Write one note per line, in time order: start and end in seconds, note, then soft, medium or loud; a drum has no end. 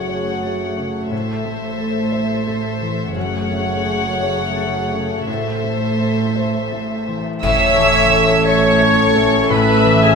0.00 1.08 F#1 soft
0.00 1.07 F#2 soft
0.00 1.14 F#2 soft
0.00 0.43 A3 soft
0.00 1.43 A3 soft
0.00 3.11 A3 soft
0.00 1.08 F#4 soft
0.00 0.30 G#4 soft
0.00 1.07 G#4 soft
0.00 1.14 G#4 soft
0.00 0.41 A4 soft
0.00 1.07 C#5 soft
0.00 1.07 F#5 soft
0.08 0.76 C#5 soft
0.08 0.64 C#5 soft
0.42 0.98 A3 soft
0.42 1.77 A4 soft
0.77 1.12 C#3 soft
0.77 1.14 C#5 soft
1.11 3.11 A1 soft
1.11 3.18 A2 soft
1.11 3.11 A2 soft
1.11 3.11 A4 soft
1.11 3.12 C5 soft
1.11 3.11 E5 soft
1.45 3.49 A3 soft
1.45 1.99 A3 soft
1.78 2.33 A4 soft
1.78 2.45 A4 soft
2.12 2.67 C5 soft
2.12 2.80 C5 soft
2.46 3.02 A3 soft
2.46 4.55 A4 soft
2.81 3.15 E3 soft
2.81 3.18 C5 soft
3.15 5.23 F#1 medium
3.15 5.30 F#2 soft
3.15 5.23 F#2 medium
3.15 5.24 F#2 soft
3.15 7.19 A3 medium
3.15 7.07 A3 medium
3.15 5.23 F#4 medium
3.15 5.23 G#4 medium
3.15 5.28 C#5 soft
3.15 5.27 F#5 medium
3.50 5.62 A3 soft
3.50 4.07 A3 soft
3.85 5.30 G#4 soft
3.85 4.42 G#4 soft
4.20 4.90 C#5 soft
4.20 4.78 C#5 soft
4.56 5.14 A3 soft
4.56 5.98 A4 soft
4.91 5.28 C#3 soft
4.91 5.30 C#5 soft
5.27 7.23 A1 soft
5.27 7.41 A2 soft
5.27 7.23 A2 soft
5.27 7.40 A2 soft
5.27 7.19 A4 soft
5.27 7.07 C5 soft
5.27 7.23 C5 soft
5.27 7.20 E5 soft
5.64 8.11 A3 soft
5.64 6.22 A3 soft
6.00 6.70 A4 soft
6.00 6.58 A4 soft
6.35 7.06 C5 soft
6.35 6.93 C5 soft
6.71 7.29 A3 soft
6.71 8.45 A4 soft
7.07 7.43 E3 soft
7.07 7.46 C5 soft
7.43 10.15 A1 medium
7.43 9.49 A2 medium
7.43 10.15 A2 medium
7.43 9.46 A2 medium
7.43 10.15 C#4 medium
7.43 10.15 A4 medium
7.43 8.43 C#5 medium
7.43 8.47 E5 medium
7.43 8.43 E5 medium
7.43 8.43 E6 medium
7.43 concert bass drum medium
7.43 crash medium
7.77 9.83 E3 medium
7.77 8.33 A3 soft
8.12 10.15 A3 soft
8.12 8.68 A4 soft
8.45 9.14 A4 soft
8.45 9.49 C#5 medium
8.45 9.50 C#5 medium
8.45 9.02 C#5 medium
8.45 8.80 E5 medium
8.45 9.50 C#6 medium
8.80 9.37 A4 medium
8.80 9.15 C#5 medium
8.80 10.15 C#5 soft
9.15 9.71 A3 soft
9.15 10.15 A4 soft
9.15 9.50 A4 medium
9.50 10.15 A2 medium
9.50 10.04 B4 medium
9.50 10.01 B4 medium
9.50 10.15 E5 medium
9.50 10.02 B5 medium
9.85 10.15 E3 soft
9.85 10.15 E3 medium
10.02 10.15 G#4 medium
10.02 10.15 G#5 medium